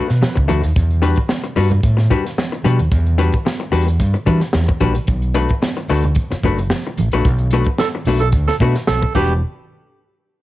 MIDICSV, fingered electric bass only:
0, 0, Header, 1, 3, 480
1, 0, Start_track
1, 0, Key_signature, 1, "minor"
1, 0, Tempo, 541028
1, 676, Time_signature, 4, 2, 24, 8
1, 9246, End_track
2, 0, Start_track
2, 0, Title_t, "Fingered electric bass"
2, 0, Program_c, 0, 33
2, 93, Note_on_c, 0, 47, 88
2, 185, Note_off_c, 0, 47, 0
2, 332, Note_on_c, 0, 37, 92
2, 425, Note_off_c, 0, 37, 0
2, 439, Note_on_c, 0, 38, 99
2, 546, Note_off_c, 0, 38, 0
2, 572, Note_on_c, 0, 39, 85
2, 665, Note_off_c, 0, 39, 0
2, 678, Note_on_c, 0, 40, 96
2, 992, Note_off_c, 0, 40, 0
2, 1398, Note_on_c, 0, 43, 94
2, 1603, Note_off_c, 0, 43, 0
2, 1630, Note_on_c, 0, 45, 106
2, 1838, Note_off_c, 0, 45, 0
2, 2353, Note_on_c, 0, 47, 99
2, 2463, Note_off_c, 0, 47, 0
2, 2482, Note_on_c, 0, 39, 81
2, 2579, Note_off_c, 0, 39, 0
2, 2593, Note_on_c, 0, 40, 94
2, 2909, Note_off_c, 0, 40, 0
2, 3305, Note_on_c, 0, 40, 96
2, 3515, Note_off_c, 0, 40, 0
2, 3549, Note_on_c, 0, 43, 107
2, 3661, Note_off_c, 0, 43, 0
2, 3788, Note_on_c, 0, 52, 116
2, 3900, Note_off_c, 0, 52, 0
2, 4034, Note_on_c, 0, 40, 99
2, 4144, Note_off_c, 0, 40, 0
2, 4269, Note_on_c, 0, 34, 99
2, 4381, Note_off_c, 0, 34, 0
2, 4509, Note_on_c, 0, 35, 104
2, 4827, Note_off_c, 0, 35, 0
2, 5235, Note_on_c, 0, 38, 95
2, 5441, Note_off_c, 0, 38, 0
2, 5711, Note_on_c, 0, 30, 98
2, 5919, Note_off_c, 0, 30, 0
2, 6205, Note_on_c, 0, 33, 93
2, 6310, Note_off_c, 0, 33, 0
2, 6325, Note_on_c, 0, 34, 86
2, 6421, Note_off_c, 0, 34, 0
2, 6432, Note_on_c, 0, 35, 96
2, 6748, Note_off_c, 0, 35, 0
2, 7159, Note_on_c, 0, 35, 99
2, 7363, Note_off_c, 0, 35, 0
2, 7391, Note_on_c, 0, 38, 104
2, 7502, Note_off_c, 0, 38, 0
2, 7635, Note_on_c, 0, 47, 126
2, 7744, Note_off_c, 0, 47, 0
2, 7887, Note_on_c, 0, 35, 88
2, 7991, Note_off_c, 0, 35, 0
2, 8120, Note_on_c, 0, 28, 101
2, 8341, Note_off_c, 0, 28, 0
2, 9246, End_track
3, 0, Start_track
3, 0, Title_t, "Muted fingered electric bass strokes"
3, 5609, Note_on_c, 9, 29, 47
3, 5698, Note_off_c, 9, 29, 0
3, 9246, End_track
0, 0, End_of_file